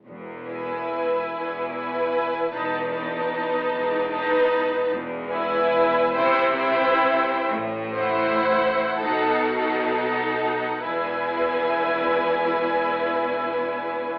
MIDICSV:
0, 0, Header, 1, 6, 480
1, 0, Start_track
1, 0, Key_signature, 4, "major"
1, 0, Tempo, 831025
1, 34, Time_signature, 6, 3, 24, 8
1, 992, Tempo, 793651
1, 2912, Tempo, 845070
1, 3872, Tempo, 906344
1, 4352, Tempo, 990099
1, 4832, Tempo, 1121495
1, 5312, Tempo, 1242236
1, 5792, Tempo, 1136364
1, 7204, End_track
2, 0, Start_track
2, 0, Title_t, "Violin section"
2, 0, Program_c, 0, 48
2, 280, Note_on_c, 0, 80, 61
2, 976, Note_off_c, 0, 80, 0
2, 1000, Note_on_c, 0, 80, 65
2, 1470, Note_off_c, 0, 80, 0
2, 1480, Note_on_c, 0, 81, 69
2, 1709, Note_off_c, 0, 81, 0
2, 1716, Note_on_c, 0, 81, 65
2, 2421, Note_off_c, 0, 81, 0
2, 2437, Note_on_c, 0, 81, 70
2, 2902, Note_off_c, 0, 81, 0
2, 3147, Note_on_c, 0, 80, 80
2, 3615, Note_off_c, 0, 80, 0
2, 3633, Note_on_c, 0, 79, 86
2, 3871, Note_off_c, 0, 79, 0
2, 3878, Note_on_c, 0, 79, 88
2, 4345, Note_off_c, 0, 79, 0
2, 4587, Note_on_c, 0, 78, 93
2, 5055, Note_off_c, 0, 78, 0
2, 5071, Note_on_c, 0, 78, 90
2, 5311, Note_off_c, 0, 78, 0
2, 5319, Note_on_c, 0, 78, 70
2, 5785, Note_off_c, 0, 78, 0
2, 5794, Note_on_c, 0, 80, 87
2, 7204, Note_off_c, 0, 80, 0
2, 7204, End_track
3, 0, Start_track
3, 0, Title_t, "Violin section"
3, 0, Program_c, 1, 48
3, 274, Note_on_c, 1, 71, 56
3, 973, Note_off_c, 1, 71, 0
3, 993, Note_on_c, 1, 71, 73
3, 1461, Note_off_c, 1, 71, 0
3, 1468, Note_on_c, 1, 71, 62
3, 1708, Note_off_c, 1, 71, 0
3, 1716, Note_on_c, 1, 71, 62
3, 2421, Note_off_c, 1, 71, 0
3, 2437, Note_on_c, 1, 71, 83
3, 2902, Note_off_c, 1, 71, 0
3, 3136, Note_on_c, 1, 71, 79
3, 3610, Note_off_c, 1, 71, 0
3, 3615, Note_on_c, 1, 72, 96
3, 3850, Note_off_c, 1, 72, 0
3, 3857, Note_on_c, 1, 72, 85
3, 4335, Note_off_c, 1, 72, 0
3, 4567, Note_on_c, 1, 72, 91
3, 5047, Note_off_c, 1, 72, 0
3, 5047, Note_on_c, 1, 69, 90
3, 5298, Note_off_c, 1, 69, 0
3, 5307, Note_on_c, 1, 69, 80
3, 5779, Note_off_c, 1, 69, 0
3, 5783, Note_on_c, 1, 71, 67
3, 7204, Note_off_c, 1, 71, 0
3, 7204, End_track
4, 0, Start_track
4, 0, Title_t, "Viola section"
4, 0, Program_c, 2, 48
4, 278, Note_on_c, 2, 64, 63
4, 971, Note_off_c, 2, 64, 0
4, 978, Note_on_c, 2, 64, 67
4, 1459, Note_off_c, 2, 64, 0
4, 1480, Note_on_c, 2, 63, 66
4, 1711, Note_off_c, 2, 63, 0
4, 1718, Note_on_c, 2, 63, 72
4, 2422, Note_off_c, 2, 63, 0
4, 2435, Note_on_c, 2, 63, 84
4, 2901, Note_off_c, 2, 63, 0
4, 3138, Note_on_c, 2, 64, 92
4, 3611, Note_off_c, 2, 64, 0
4, 3619, Note_on_c, 2, 64, 92
4, 3862, Note_off_c, 2, 64, 0
4, 3869, Note_on_c, 2, 64, 102
4, 4341, Note_off_c, 2, 64, 0
4, 4582, Note_on_c, 2, 64, 86
4, 5053, Note_off_c, 2, 64, 0
4, 5061, Note_on_c, 2, 63, 85
4, 5302, Note_off_c, 2, 63, 0
4, 5308, Note_on_c, 2, 63, 87
4, 5780, Note_off_c, 2, 63, 0
4, 5783, Note_on_c, 2, 64, 79
4, 7204, Note_off_c, 2, 64, 0
4, 7204, End_track
5, 0, Start_track
5, 0, Title_t, "Cello section"
5, 0, Program_c, 3, 48
5, 30, Note_on_c, 3, 40, 83
5, 672, Note_off_c, 3, 40, 0
5, 755, Note_on_c, 3, 40, 78
5, 1388, Note_off_c, 3, 40, 0
5, 1471, Note_on_c, 3, 40, 92
5, 2110, Note_off_c, 3, 40, 0
5, 2202, Note_on_c, 3, 40, 88
5, 2828, Note_off_c, 3, 40, 0
5, 2910, Note_on_c, 3, 40, 101
5, 3536, Note_off_c, 3, 40, 0
5, 3621, Note_on_c, 3, 48, 108
5, 4264, Note_off_c, 3, 48, 0
5, 4354, Note_on_c, 3, 45, 123
5, 4982, Note_off_c, 3, 45, 0
5, 5065, Note_on_c, 3, 47, 107
5, 5712, Note_off_c, 3, 47, 0
5, 5790, Note_on_c, 3, 40, 90
5, 7204, Note_off_c, 3, 40, 0
5, 7204, End_track
6, 0, Start_track
6, 0, Title_t, "Double bass section"
6, 0, Program_c, 4, 48
6, 35, Note_on_c, 4, 28, 91
6, 675, Note_off_c, 4, 28, 0
6, 757, Note_on_c, 4, 28, 73
6, 1389, Note_off_c, 4, 28, 0
6, 1480, Note_on_c, 4, 28, 93
6, 2115, Note_off_c, 4, 28, 0
6, 2202, Note_on_c, 4, 28, 92
6, 2828, Note_off_c, 4, 28, 0
6, 2918, Note_on_c, 4, 28, 114
6, 3540, Note_off_c, 4, 28, 0
6, 3630, Note_on_c, 4, 36, 102
6, 4269, Note_off_c, 4, 36, 0
6, 4355, Note_on_c, 4, 33, 120
6, 4982, Note_off_c, 4, 33, 0
6, 5064, Note_on_c, 4, 35, 95
6, 5711, Note_off_c, 4, 35, 0
6, 5791, Note_on_c, 4, 28, 89
6, 7204, Note_off_c, 4, 28, 0
6, 7204, End_track
0, 0, End_of_file